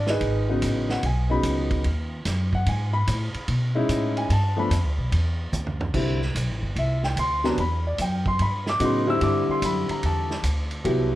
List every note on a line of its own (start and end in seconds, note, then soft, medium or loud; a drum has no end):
0.00 0.19 G#1 medium
0.07 0.49 D#4 medium
0.07 0.59 G#4 medium
0.07 0.59 B4 medium
0.07 0.59 D#5 medium
0.07 snare medium
0.21 0.60 G#1 medium
0.21 ride medium
0.49 1.00 C#3 medium
0.49 1.00 F#3 medium
0.49 1.01 B3 medium
0.49 1.01 D#4 medium
0.62 1.02 A1 medium
0.62 hi-hat pedal medium
0.62 ride medium
0.89 1.03 F#5 medium
0.89 snare soft
1.03 1.43 B1 medium
1.03 1.31 G#5 medium
1.03 ride medium
1.29 1.81 C#3 medium
1.29 1.82 F#3 medium
1.29 1.82 B3 medium
1.29 1.82 D#4 medium
1.29 1.81 B5 loud
1.43 1.83 C#2 medium
1.43 hi-hat pedal medium
1.43 ride medium
1.71 kick medium
1.71 ride soft
1.84 2.24 D#2 medium
1.84 ride medium
2.25 2.65 F#2 medium
2.25 snare soft
2.25 hi-hat pedal medium
2.25 ride medium
2.53 2.67 F#5 medium
2.53 kick medium
2.66 3.06 G#2 medium
2.66 2.94 G#5 medium
2.66 ride medium
2.93 3.44 B5 loud
3.07 3.33 A2 medium
3.07 hi-hat pedal medium
3.07 ride medium
3.34 muted upright bass stroke soft
3.34 ride soft
3.48 3.88 B2 medium
3.48 ride medium
3.75 4.27 G#3 medium
3.75 4.27 C#4 medium
3.75 4.27 D#4 medium
3.75 4.28 E4 medium
3.89 4.29 A2 medium
3.89 hi-hat pedal medium
3.89 ride medium
4.17 4.30 G#5 loud
4.17 ride soft
4.30 4.69 G2 medium
4.30 4.58 A5 medium
4.30 ride medium
4.57 4.69 F3 medium
4.57 4.69 A3 medium
4.57 4.70 B3 medium
4.57 4.70 D4 medium
4.57 5.09 B5 medium
4.70 4.84 F2 medium
4.70 hi-hat pedal medium
4.70 ride medium
4.84 4.97 D2 medium
4.98 5.11 B1 medium
5.12 5.51 E2 medium
5.12 ride medium
5.52 5.92 D2 medium
5.52 hi-hat pedal medium
5.52 high tom soft
5.67 floor tom medium
5.81 floor tom medium
5.94 6.34 C2 medium
5.94 6.18 D3 medium
5.94 6.19 G3 medium
5.94 6.18 C4 medium
5.94 6.19 E4 medium
5.94 kick medium
5.94 crash medium
6.22 snare soft
6.35 6.49 B1 medium
6.35 hi-hat pedal medium
6.35 ride medium
6.49 6.62 A1 medium
6.63 6.75 G1 medium
6.76 7.15 C2 medium
6.76 7.03 E5 medium
6.76 ride medium
7.03 7.17 G5 medium
7.03 snare soft
7.16 7.56 D2 medium
7.16 7.44 C6 loud
7.16 hi-hat pedal medium
7.16 ride medium
7.44 7.56 C3 medium
7.44 7.56 F#3 medium
7.44 7.57 B3 medium
7.44 7.57 D4 medium
7.44 7.58 A#5 medium
7.44 snare soft
7.58 7.97 E2 medium
7.58 7.85 B5 medium
7.58 ride medium
7.87 7.99 D5 medium
7.98 8.38 F#2 medium
7.98 8.26 G5 medium
7.98 hi-hat pedal medium
7.98 ride medium
8.26 8.40 C6 loud
8.26 kick medium
8.39 8.79 G2 medium
8.39 8.67 B5 medium
8.39 ride medium
8.66 8.81 D6 loud
8.66 snare medium
8.80 9.20 A2 medium
8.80 9.05 C#3 medium
8.80 9.05 F#3 medium
8.80 9.05 B3 medium
8.80 9.05 D#4 medium
8.80 hi-hat pedal medium
8.80 ride medium
8.85 9.09 C6 medium
9.06 9.19 D3 medium
9.06 9.19 G3 medium
9.06 9.20 C4 medium
9.06 9.20 E4 medium
9.06 9.22 E6 loud
9.20 9.47 G2 medium
9.20 10.36 D3 medium
9.20 10.36 G3 medium
9.20 10.36 C4 medium
9.20 10.36 E4 medium
9.20 9.49 D6 loud
9.20 ride medium
9.49 9.63 C6 medium
9.49 muted upright bass stroke soft
9.62 9.87 F#2 medium
9.62 9.90 B5 medium
9.62 hi-hat pedal medium
9.62 ride medium
9.89 10.04 A#5 medium
9.89 muted upright bass stroke soft
9.89 ride medium
10.03 10.43 E2 medium
10.03 11.15 A5 medium
10.03 ride medium
10.30 snare soft
10.43 10.83 D2 medium
10.43 hi-hat pedal medium
10.43 ride medium
10.71 ride soft
10.84 11.15 C2 medium
10.84 11.09 F#3 medium
10.84 11.10 B3 medium
10.84 11.10 E4 medium
10.84 11.10 G4 medium
10.84 ride medium